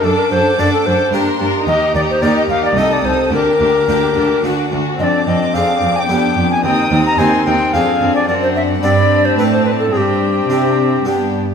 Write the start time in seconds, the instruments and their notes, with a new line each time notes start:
0.04 cello section F#2, harpsichord F#2, viola section D4, violin section A4 D6, recorder A4
0.19 recorder A#4
0.31 cello section F#2, harpsichord F#2, viola section D4, violin section A4, recorder C5
0.58 cello section F#2, harpsichord F#2 A3 D4 A4, viola section D4, violin section A4, recorder D5
0.73 recorder A4
0.86 cello section F#2, harpsichord F#2, viola section D4, violin section A4, recorder C5
1.12 cello section G2, harpsichord G2 A#3 D4 G4, viola section D4, violin section A#4 C6
1.39 harpsichord G2, cello section G2, viola section D4, violin section A#4
1.67 harpsichord D#2, cello section D#2, viola section D#4, violin section G4 A#5, recorder D#5
1.94 cello section D#2, harpsichord D#2, viola section D#4, violin section G4, recorder D5
2.10 recorder C5
2.21 cello section D#2, harpsichord D#2 A#3 D#4 G4, viola section D#4, violin section G4, recorder D5
2.37 recorder D#5
2.49 cello section D#2, harpsichord D#2, viola section D#4, violin section G4, recorder F5
2.65 recorder D5
2.77 cello section C2, harpsichord C2 A3 D#4 A4, viola section D#4, violin section A4 D#6, recorder D#5
2.93 recorder D5
3.04 cello section C2, harpsichord C2, viola section D#4, violin section A4, recorder C5
3.32 cello section D2, harpsichord D2, viola section D4, violin section G4 D6, recorder A#4
3.60 harpsichord D2, cello section D2, viola section D4, violin section G4
3.87 cello section D2, harpsichord D2 A#3 D4 G4, viola section D4, violin section G4
4.15 cello section D2, harpsichord D2, viola section D4, violin section G4
4.43 cello section D2, harpsichord D2 D4 F#4, viola section D4, violin section F#4
4.71 cello section D2, harpsichord D2, viola section D4, violin section F#4
4.99 cello section F2, harpsichord F2, viola section C4, violin section D4 D6, recorder D#5
5.04 recorder D5
5.26 cello section F2, harpsichord F2, viola section C4, violin section D4, recorder D#5
5.54 cello section F2, harpsichord F2 C4 D4 G#4, viola section C4, violin section D4, recorder F5
5.81 harpsichord F2, cello section F2, viola section C4, violin section D4
5.96 recorder G5 G#5
6.09 harpsichord F2 B3 D4 G4, cello section F2, viola section B3, violin section D4
6.36 cello section F2, harpsichord F2, viola section B3, violin section D4
6.52 recorder G#5
6.63 harpsichord D#2, cello section D#2, viola section C4, violin section D#4 D#6, recorder G5
6.91 cello section D#2, harpsichord D#2, viola section C4, violin section D#4
7.06 recorder A#5
7.18 harpsichord D#2 C4 D#4 G4, cello section D#2, viola section C4, violin section D#4 C6, recorder G#5
7.46 harpsichord D#2, cello section D#2, viola section C4, violin section D#4, recorder G5
7.73 harpsichord F2 C4 D4 G#4, cello section F2, viola section C4, violin section D4 G#5, recorder F5
8.02 cello section F2, harpsichord F2, viola section C4, violin section D4
8.15 recorder D5
8.28 harpsichord F#2, cello section F#2, viola section C4, violin section D4 F#5, recorder D5
8.43 recorder C5
8.56 recorder E5
8.82 harpsichord G2 C4 D4 A4, cello section G2, viola section C4, violin section D4 B5, recorder D5
9.25 recorder C5
9.38 cello section A2, harpsichord A2 C4 D4 A4, recorder B4, violin section A5
9.53 recorder C5
9.65 recorder B4
9.79 recorder A4
9.93 cello section G2, harpsichord G2, viola section C4, violin section D4 G5, recorder G#4
9.97 recorder G4
10.50 harpsichord C3 C4 D4 G4, cello section C3
11.05 harpsichord G2 B3 D4 G4, cello section G2, viola section B3, violin section D4